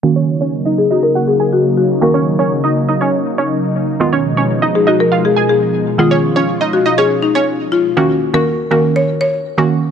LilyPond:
<<
  \new Staff \with { instrumentName = "Synth pluck" } { \time 4/4 \key ees \minor \tempo 4 = 121 r16 <des' des''>16 r16 <des' des''>16 r16 <ees' ees''>16 r16 <ees' ees''>16 r16 <ges' ges''>16 r16 <aes' aes''>16 r4 | r16 <des' des''>16 r16 <des' des''>16 r16 <ees' ees''>16 r16 <ees' ees''>16 <des' des''>16 r8 <des' des''>16 r4 | r16 <des' des''>16 r16 <des' des''>16 r16 <ees' ees''>16 r16 <ees' ees''>16 r16 <f' f''>16 r16 <aes' aes''>16 r4 | r16 <des' des''>16 r16 <des' des''>16 r16 <ees' ees''>16 r16 <ees' ees''>16 <des' des''>16 r8 <des' des''>16 r4 |
r1 | }
  \new Staff \with { instrumentName = "Marimba" } { \time 4/4 \key ees \minor r4. aes'16 ges'16 bes'8 aes'8 ges'8 ges'8 | bes'2. r4 | r4. aes'16 ges'16 bes'8 aes'8 aes'4 | f'4. ges'8 aes'8 ees'4 f'8 |
ges'8. bes'8. bes'8 des''8 des''4. | }
  \new Staff \with { instrumentName = "Synth pluck" } { \time 4/4 \key ees \minor <ees bes des' ges'>1 | <ees bes des' ges'>1 | <ees aes ces' f'>1 | <ees aes ces' aes'>1 |
<ees bes des' ges'>8 r16 <ees bes des' ges'>8 r16 <ees bes des' ges'>4 r8. <ees bes des' ges'>8 r16 | }
  \new Staff \with { instrumentName = "Analog synth pad" } { \clef bass \time 4/4 \key ees \minor << { ees'1~ | ees'1~ | ees'1 | f'1 |
r1 | } \\ { <des ges bes>1~ | <des ges bes>1 | <ces f aes>1~ | <ces f aes>1 |
r1 | } >> }
>>